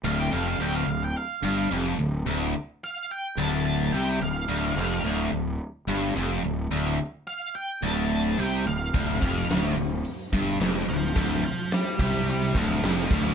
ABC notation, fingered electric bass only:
X:1
M:4/4
L:1/8
Q:1/4=108
K:Dm
V:1 name="Fingered electric bass" clef=bass
D,,, F,,, D,,, D,,, z G,,, F,,, D,,, | D,,, z3 D,,,2 C,, D,,, | D,,, F,,, D,,, D,,, z G,,, F,,, D,,, | D,,, z3 D,,,2 C,, D,,, |
D,,, F,,, D,,, D,,, z G,,, F,,, D,,, | D,,, z2 C,,2 D,,, F,,, D,,, |]